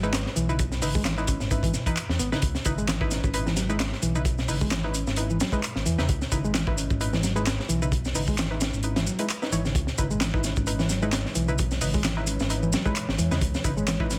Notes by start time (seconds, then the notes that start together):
Already playing: G#1
0.03 G#3 D#4 E4 B4, shaker
0.13 snare, clap, closed hi-hat, shaker
0.26 snare
0.36 B1 E3, closed hi-hat, shaker
0.49 C#3 D#4 E4 B4, shaker
0.59 kick, closed hi-hat, shaker
0.72 snare, shaker
0.82 G#1 C#3 D#4 E4 B4, open hi-hat, shaker
0.95 G#3, kick, shaker
1.05 E3, snare, clap, closed hi-hat, shaker
1.18 D#4 E4 B4, shaker
1.27 C#4, kick, closed hi-hat, shaker
1.40 G#1, snare, shaker
1.51 D#4 E4 B4, kick, closed hi-hat, shaker
1.63 E3, kick, closed hi-hat, shaker
1.74 B2, snare, shaker
1.86 E3 D#4 E4 B4, kick, closed hi-hat, shaker
1.97 clap, closed hi-hat, shaker
2.09 E2, snare
2.19 G#1 B3, closed hi-hat, shaker
2.32 C#3 D#4 E4 B4, snare, shaker
2.42 C#2, kick, closed hi-hat, shaker
2.55 snare, shaker
2.65 G#1 C#3 D#4 E4 B4, kick, closed hi-hat, shaker
2.78 G#3, shaker
2.88 E3, snare, clap, closed hi-hat, shaker
3.01 D#4 E4 B4, kick
3.11 C#4, snare, closed hi-hat, shaker
3.24 G#1, kick, shaker
3.34 D#4 E4 B4, closed hi-hat, shaker
3.46 E3, snare, shaker
3.56 F#3, snare, closed hi-hat, shaker
3.69 G#3 D#4 E4 B4, shaker
3.79 snare, clap, closed hi-hat, shaker
3.92 snare
4.02 B1 E3, closed hi-hat, shaker
4.15 C#3 D#4 E4 B4, shaker
4.25 kick, closed hi-hat, shaker
4.38 snare, shaker
4.48 G#1 C#3 D#4 E4 B4, open hi-hat, shaker
4.61 G#3, kick, shaker
4.71 E3, snare, clap, closed hi-hat, shaker
4.84 D#4 E4 B4
4.94 C#4, closed hi-hat, shaker
5.07 G#1, snare, shaker
5.16 D#4 E4 B4, closed hi-hat, shaker
5.30 E3, shaker
5.40 F#3, snare, closed hi-hat, shaker
5.52 G#3 D#4 E4 B4, kick, shaker
5.63 clap, closed hi-hat, shaker
5.76 G#1, snare
5.86 E2 E3, closed hi-hat, shaker
5.98 E2 C#3 D#4 E4 B4, snare, shaker
6.09 C#2, kick, closed hi-hat, shaker
6.22 snare, shaker
6.31 G#1 C#3 D#4 E4 B4, kick, closed hi-hat, shaker
6.44 G#3, shaker
6.54 E3, snare, clap, closed hi-hat, shaker
6.67 D#4 E4 B4, kick
6.77 C#4, closed hi-hat, shaker
6.90 G#1, kick, shaker
7.00 D#4 E4 B4, closed hi-hat, shaker
7.13 E3, snare, shaker
7.23 F#3, snare, closed hi-hat, shaker
7.36 G#3 D#4 E4 B4, shaker
7.46 snare, clap, closed hi-hat, shaker
7.60 snare
7.69 B1 E3, closed hi-hat, shaker
7.82 C#3 D#4 E4 B4, shaker
7.92 kick, closed hi-hat, shaker
8.05 snare, shaker
8.15 G#1 C#3 D#4 E4 B4, open hi-hat, shaker
8.28 G#3, kick, shaker
8.38 E3, snare, clap, closed hi-hat, shaker
8.51 D#4 E4 B4
8.61 C#4, snare, closed hi-hat, shaker
8.73 G#1, shaker
8.83 D#4 E4 B4, closed hi-hat, shaker
8.96 E3, snare, closed hi-hat, shaker
9.07 F#3, shaker
9.19 G#3 D#4 E4 B4, closed hi-hat, shaker
9.29 clap, closed hi-hat, shaker
9.42 D#4 E4 B4, snare, shaker
9.52 G#1 E3 D#4 E4 C#5, closed hi-hat, shaker
9.65 C#3, snare, shaker
9.75 C#2 E3 G#3 B4 C#5, kick, closed hi-hat, shaker
9.87 snare, shaker
9.98 G#1 C#3 D#4 E4 B4, kick, closed hi-hat, shaker
10.11 G#3, shaker
10.21 E3, snare, clap, closed hi-hat, shaker
10.34 D#4 E4 B4, kick
10.44 C#4, snare, closed hi-hat, shaker
10.56 G#1, kick, shaker
10.67 D#4 E4 B4, closed hi-hat, shaker
10.79 E3, snare, shaker
10.89 F#3, snare, closed hi-hat, shaker
11.02 G#3 D#4 E4 B4, shaker
11.12 snare, clap, closed hi-hat, shaker
11.25 snare
11.35 B1 E3, closed hi-hat, shaker
11.48 C#3 D#4 E4 B4, shaker
11.58 kick, closed hi-hat, shaker
11.71 snare, shaker
11.81 G#1 C#3 D#4 E4 B4, open hi-hat, shaker
11.94 G#3, kick, shaker
12.04 E3, snare, clap, closed hi-hat, shaker
12.17 D#4 E4 B4
12.27 C#4, closed hi-hat, shaker
12.40 G#1, snare, shaker
12.50 D#4 E4 B4, closed hi-hat, shaker
12.63 E3, shaker
12.72 F#3, snare, closed hi-hat, shaker
12.86 G#3 D#4 E4 B4, kick, shaker
12.95 clap, closed hi-hat, shaker
13.09 G#1, snare
13.18 E2 E3, closed hi-hat, shaker
13.31 E2 C#3 D#4 E4 B4, snare, shaker
13.41 C#2, kick, closed hi-hat, shaker
13.54 snare, shaker
13.64 G#1 C#3 D#4 E4 B4, kick, closed hi-hat, shaker
13.77 G#3, shaker
13.87 E3, snare, clap, closed hi-hat, shaker
14.00 D#4 E4 B4, kick
14.10 C#4, snare, closed hi-hat, shaker